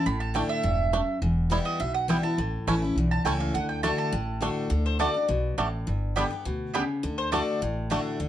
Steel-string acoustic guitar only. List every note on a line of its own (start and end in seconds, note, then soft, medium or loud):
0.06 0.61 A2 loud
0.34 0.62 D3 medium
0.34 0.63 A3 medium
0.34 0.63 D4 medium
0.34 0.63 E4 loud
0.63 0.92 G2 medium
0.93 1.21 F#2 medium
1.22 1.77 E2 loud
1.50 1.78 E3 medium
1.50 1.79 G3 medium
1.50 1.79 B3 medium
1.50 1.79 E4 loud
1.80 2.35 B2 medium
2.08 2.23 E3 medium
2.08 2.23 G3 medium
2.08 2.24 B3 medium
2.08 2.22 E4 medium
2.23 2.39 B3 soft
2.23 2.37 E4 medium
2.38 2.94 A2 loud
2.67 2.82 E3 medium
2.67 2.82 A3 medium
2.67 2.82 C#4 medium
2.67 2.81 E4 loud
2.82 2.97 C#4 medium
2.82 2.96 E4 medium
2.98 3.52 E2 loud
3.25 3.53 E3 medium
3.25 3.53 A3 loud
3.25 3.54 C#4 medium
3.25 3.54 E4 loud
3.55 3.82 D3 medium
3.83 4.11 D3 medium
3.83 4.11 A3 loud
3.83 4.12 D4 medium
3.83 4.12 F#4 medium
4.12 4.68 A2 loud
4.41 4.69 D3 medium
4.41 4.69 A3 medium
4.41 4.70 D4 loud
4.41 4.70 F#4 loud
4.70 4.98 D3 loud
4.99 5.14 D3 medium
4.99 5.14 A3 medium
4.99 5.14 D4 medium
4.99 5.13 F#4 medium
5.14 5.29 D4 soft
5.14 5.28 F#4 medium
5.28 5.56 B2 medium
5.58 5.86 A2 medium
5.87 6.42 G2 medium
6.16 6.30 D3 medium
6.16 6.31 G3 medium
6.16 6.31 B3 medium
6.16 6.29 G4 medium
6.30 6.46 B3 soft
6.30 6.45 G4 medium
6.45 6.73 B2 loud
6.75 7.02 C#3 medium
7.03 7.31 D3 loud
7.32 7.60 D3 medium
7.32 7.60 A3 medium
7.32 7.61 D4 medium
7.32 7.61 F#4 medium
7.62 8.17 A2 loud
7.90 8.18 D3 medium
7.90 8.18 A3 medium
7.90 8.19 D4 medium
7.90 8.19 F#4 loud
8.20 8.29 D3 loud